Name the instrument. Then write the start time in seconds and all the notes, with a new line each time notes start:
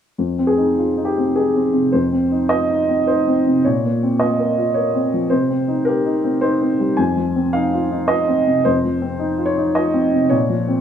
upright piano
0.18 F2
0.39 C4
0.47 G#4
0.57 D#4
0.78 F4
0.97 D#4
1.05 G4
1.18 C4
1.36 D#4 G#4
1.56 C4
1.73 C3
1.92 F2 C5
2.12 C4
2.32 D#4
2.49 F4 D#5
2.70 D#4
2.89 C4
3.07 D#4 C5
3.27 C4
3.47 C3
3.65 A#2 C#5
3.85 A#3
4.03 C4
4.20 F4 D#5
4.39 A#4
4.57 F4
4.74 A#4 C#5
4.95 C4
5.14 F3
5.30 C3 C5
5.50 C4
5.68 D#4
5.85 G4 A#4
6.06 D#4
6.24 C4
6.41 D#4 C5
6.62 C4
6.80 G3
6.97 F2 G#5
7.17 F3
7.36 C4
7.53 D#4 F5
7.73 F4
7.91 D#4
8.08 F4 D#5
8.28 C4
8.47 C3
8.65 F2 C5
8.84 F3
9.02 C4
9.19 D#4
9.38 F4
9.46 C#5
9.57 D#4
9.75 F4 D#5
9.94 C4
10.13 C3
10.30 A#2 C#5
10.50 F3
10.68 C4